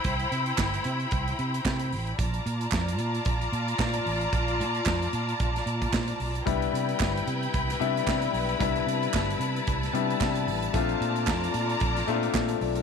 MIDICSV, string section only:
0, 0, Header, 1, 2, 480
1, 0, Start_track
1, 0, Key_signature, 0, "major"
1, 0, Tempo, 534283
1, 44, Time_signature, 4, 2, 24, 8
1, 11518, End_track
2, 0, Start_track
2, 0, Title_t, "String section"
2, 0, Program_c, 0, 48
2, 0, Note_on_c, 0, 64, 81
2, 0, Note_on_c, 0, 72, 67
2, 0, Note_on_c, 0, 79, 66
2, 0, Note_on_c, 0, 83, 80
2, 1930, Note_off_c, 0, 72, 0
2, 1930, Note_off_c, 0, 83, 0
2, 1931, Note_off_c, 0, 64, 0
2, 1932, Note_off_c, 0, 79, 0
2, 1964, Note_on_c, 0, 81, 67
2, 1969, Note_on_c, 0, 65, 79
2, 1970, Note_on_c, 0, 74, 69
2, 1971, Note_on_c, 0, 82, 83
2, 5770, Note_off_c, 0, 81, 0
2, 5773, Note_off_c, 0, 65, 0
2, 5773, Note_off_c, 0, 74, 0
2, 5774, Note_off_c, 0, 82, 0
2, 5814, Note_on_c, 0, 79, 70
2, 5816, Note_on_c, 0, 71, 75
2, 5818, Note_on_c, 0, 83, 85
2, 5819, Note_on_c, 0, 64, 70
2, 7712, Note_off_c, 0, 79, 0
2, 7724, Note_on_c, 0, 81, 76
2, 9618, Note_off_c, 0, 71, 0
2, 9618, Note_off_c, 0, 83, 0
2, 9619, Note_off_c, 0, 64, 0
2, 9657, Note_on_c, 0, 74, 70
2, 9663, Note_on_c, 0, 65, 76
2, 9663, Note_on_c, 0, 82, 90
2, 11518, Note_off_c, 0, 65, 0
2, 11518, Note_off_c, 0, 74, 0
2, 11518, Note_off_c, 0, 81, 0
2, 11518, Note_off_c, 0, 82, 0
2, 11518, End_track
0, 0, End_of_file